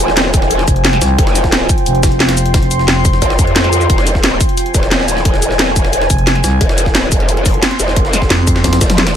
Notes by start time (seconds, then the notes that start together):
Already playing: D#1 F4 C5 G5 G#5
0.08 snare
0.17 snare, closed hi-hat
0.34 kick, closed hi-hat, shaker
0.42 snare
0.51 closed hi-hat, shaker
0.59 snare
0.68 F1, kick, closed hi-hat, shaker
0.76 closed hi-hat
0.85 snare, closed hi-hat
0.93 snare, closed hi-hat
1.02 C2, snare, closed hi-hat, open hi-hat, shaker
1.18 F1 C6, kick, closed hi-hat
1.27 snare
1.35 snare, closed hi-hat, shaker
1.44 kick, snare
1.52 snare, closed hi-hat
1.69 kick, closed hi-hat, shaker
1.78 closed hi-hat
1.86 F1, closed hi-hat, shaker
1.95 closed hi-hat
2.03 kick, snare, closed hi-hat, shaker
2.12 closed hi-hat
2.20 snare, closed hi-hat
2.29 snare, closed hi-hat
2.37 closed hi-hat, open hi-hat, shaker
2.46 closed hi-hat
2.54 kick, snare, closed hi-hat
2.63 closed hi-hat
2.71 closed hi-hat, shaker
2.79 snare
2.88 snare, closed hi-hat
3.05 kick, closed hi-hat, shaker
3.13 snare
3.22 G#1, kick, closed hi-hat, shaker
3.30 snare
3.39 F2, kick, closed hi-hat, shaker
3.47 closed hi-hat
3.56 snare, closed hi-hat
3.64 snare, closed hi-hat
3.73 closed hi-hat, open hi-hat, shaker
3.81 shaker
3.90 F1 G#5, kick, closed hi-hat
3.98 snare
4.07 snare, closed hi-hat, shaker
4.15 kick, snare
4.24 snare, closed hi-hat
4.40 kick, closed hi-hat, shaker
4.49 closed hi-hat
4.57 closed hi-hat, shaker
4.66 closed hi-hat
4.74 D#1, kick, closed hi-hat, shaker
4.83 snare
4.91 snare, closed hi-hat
5.00 snare
5.08 snare, closed hi-hat, open hi-hat, shaker
5.17 snare
5.25 kick, closed hi-hat
5.34 snare
5.42 closed hi-hat, shaker
5.51 snare
5.59 snare, closed hi-hat
5.76 kick, closed hi-hat, shaker
5.85 snare
5.93 closed hi-hat, shaker
6.02 snare
6.10 F1, kick, closed hi-hat, shaker
6.18 closed hi-hat
6.27 snare, closed hi-hat
6.35 snare, closed hi-hat
6.44 C2, snare, closed hi-hat, open hi-hat, shaker
6.61 F1 C6, kick, closed hi-hat
6.69 snare
6.78 snare, closed hi-hat, shaker
6.86 kick, snare
6.95 snare, closed hi-hat
7.12 F1, kick, closed hi-hat, shaker
7.20 closed hi-hat
7.29 closed hi-hat, shaker
7.37 closed hi-hat
7.46 kick, closed hi-hat, open hi-hat, shaker
7.54 closed hi-hat
7.63 snare, closed hi-hat
7.71 snare, closed hi-hat
7.79 F1, snare, closed hi-hat, open hi-hat, shaker
7.88 snare
7.96 kick, closed hi-hat
8.05 snare
8.13 snare, closed hi-hat, shaker
8.22 kick, snare
8.30 F2, snare, closed hi-hat
8.47 kick, closed hi-hat, shaker
8.56 snare
8.64 kick, snare, closed hi-hat, high tom, shaker
8.73 snare, closed hi-hat, high tom
8.81 F1, kick, snare, closed hi-hat, shaker
8.90 snare, closed hi-hat, mid tom
8.98 snare, closed hi-hat, mid tom
9.07 snare, closed hi-hat